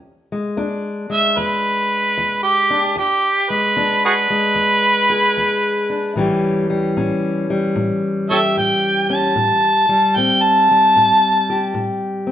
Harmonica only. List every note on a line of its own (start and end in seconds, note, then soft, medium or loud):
1.13 1.40 E5 medium
1.38 2.42 B4 medium
2.43 2.96 G4 medium
2.99 3.52 G4 medium
3.50 4.02 B4 medium
4.05 4.13 F#4 medium
4.05 4.14 G#4 medium
4.05 6.40 B4 loud
8.30 8.39 A4 medium
8.30 8.37 C#5 medium
8.30 8.56 E5 medium
8.58 9.08 G5 medium
9.09 10.18 A5 loud
10.16 10.44 G5 medium
10.42 11.97 A5 loud